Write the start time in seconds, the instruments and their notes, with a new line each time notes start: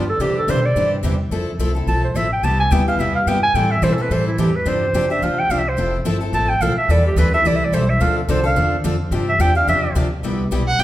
Already playing: upright bass G2
0.09 clarinet A4
0.19 upright bass C3, steel-string acoustic guitar C3 D3 E3 G3 C4 D4 E4 G4 C5, clarinet G4
0.38 clarinet A4
0.47 upright bass B2, steel-string acoustic guitar C3 D3 E3 G3 C4 D4 E4 G4 C5, clarinet C5
0.66 clarinet D5
0.76 upright bass G2, steel-string acoustic guitar C3 D3 E3 G3 C4 D4 E4 G4 C5
1.03 upright bass E2, steel-string acoustic guitar C3 D3 E3 G3 C4 D4 E4 G4 C5
1.31 upright bass F2, steel-string acoustic guitar F3 A3 C4 E4 A4
1.59 upright bass C2, steel-string acoustic guitar F3 A3 C4 E4 A4
1.75 steel-string acoustic guitar C4 E4 A4
1.87 upright bass B1, steel-string acoustic guitar F3 A3 C4 E4 A4, clarinet A5
2.05 clarinet C5
2.14 upright bass A1, steel-string acoustic guitar F3 A3 C4 E4 A4, clarinet E5
2.33 clarinet G5
2.43 upright bass C2, steel-string acoustic guitar C3 G3 B3 E4 G4, clarinet A5
2.60 clarinet G#5
2.71 upright bass D2, steel-string acoustic guitar C3 G3 B3 E4 G4, clarinet G5
2.88 steel-string acoustic guitar B3 E4 G4, clarinet F5
2.99 upright bass E2, steel-string acoustic guitar C3 G3 B3 E4 G4, clarinet E5
3.16 clarinet F5
3.26 upright bass G2, steel-string acoustic guitar C3 G3 B3 E4 G4, clarinet G5
3.43 clarinet G#5
3.54 upright bass A2, steel-string acoustic guitar E3 G3 C4 E4 A4, clarinet G5
3.71 clarinet E5
3.82 upright bass B2, steel-string acoustic guitar E3 G3 C4 E4 A4, clarinet C5
3.93 clarinet A4
3.98 steel-string acoustic guitar C4 E4 A4, clarinet B4
4.11 upright bass A2, steel-string acoustic guitar E3 G3 C4 E4 A4, clarinet C5
4.28 clarinet E4
4.38 upright bass E2, steel-string acoustic guitar E3 G3 C4 E4 A4, clarinet G4
4.56 clarinet B4
4.66 upright bass G2, steel-string acoustic guitar C3 F3 C4 D4 G4, clarinet C5
4.93 upright bass F2, steel-string acoustic guitar C3 F3 C4 D4 G4
5.10 steel-string acoustic guitar C4 D4 G4, clarinet E5
5.22 upright bass D2, steel-string acoustic guitar C3 F3 C4 D4 G4, clarinet F5
5.39 clarinet G5
5.49 upright bass C2, steel-string acoustic guitar C3 F3 C4 D4 G4, clarinet F5
5.59 clarinet E5
5.69 clarinet C5
5.77 upright bass F1, steel-string acoustic guitar F3 A3 C4 E4 A4
6.05 upright bass G1, steel-string acoustic guitar F3 A3 C4 E4 A4
6.21 steel-string acoustic guitar C4 E4 A4
6.33 upright bass A1, steel-string acoustic guitar F3 A3 C4 E4 A4, clarinet A5
6.49 clarinet G5
6.60 upright bass B1, steel-string acoustic guitar F3 A3 C4 E4 A4, clarinet F5
6.77 clarinet E5, muted upright bass stroke
6.88 upright bass E2, steel-string acoustic guitar E3 G3 C4 E4 A4, clarinet D5
7.07 clarinet G4
7.16 upright bass D2, steel-string acoustic guitar E3 G3 C4 E4 A4, clarinet B4
7.34 steel-string acoustic guitar C4 E4 A4, clarinet E5
7.44 upright bass C2, steel-string acoustic guitar E3 G3 C4 E4 A4, clarinet D5
7.56 clarinet E5
7.64 clarinet D5
7.72 upright bass B1, steel-string acoustic guitar E3 G3 C4 E4 A4, clarinet C5
7.90 clarinet E5
8.00 upright bass D2, steel-string acoustic guitar D3 F3 C4 D4 A4, clarinet F5
8.18 clarinet A4
8.28 upright bass C2, steel-string acoustic guitar D3 F3 C4 D4 A4, clarinet C5
8.44 steel-string acoustic guitar C4 D4 A4, clarinet F5
8.56 upright bass E2, steel-string acoustic guitar D3 F3 C4 D4 A4
8.84 upright bass F2, steel-string acoustic guitar D3 F3 C4 D4 A4
9.11 upright bass G2, steel-string acoustic guitar C3 F3 C4 D4 G4
9.29 clarinet E5
9.39 upright bass E2, steel-string acoustic guitar C3 F3 C4 D4 G4, clarinet G5
9.55 steel-string acoustic guitar C4 D4 G4, clarinet F5
9.68 upright bass F2, steel-string acoustic guitar C3 F3 C4 D4 G4, clarinet E5
9.95 upright bass D2, steel-string acoustic guitar C3 F3 C4 D4 G4
10.23 upright bass C2, steel-string acoustic guitar C3 G3 B3 E4 G4
10.51 upright bass B1, steel-string acoustic guitar C3 G3 B3 E4 G4
10.67 violin F#5
10.79 upright bass A1, steel-string acoustic guitar C3 G3 B3 E4 G4, violin G5